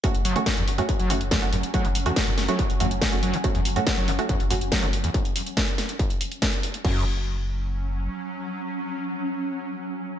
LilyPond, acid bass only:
\new Staff \with { instrumentName = "Acid bass" } { \clef bass \time 4/4 \key fis \minor \tempo 4 = 141 fis,16 r16 fis16 b,16 r16 e,16 r16 fis,16 r16 fis16 b,16 r16 e,16 r16 fis,16 r16 | fis16 b,16 r16 e,16 r16 fis,16 r16 fis16 b,16 r16 e,16 r16 fis,16 r16 fis16 b,16 | r16 e,16 r16 fis,16 r16 fis16 b,16 r16 e,16 r16 fis,16 r16 fis16 b,16 r16 e,16 | r1 |
fis,8 r2. r8 | r1 | }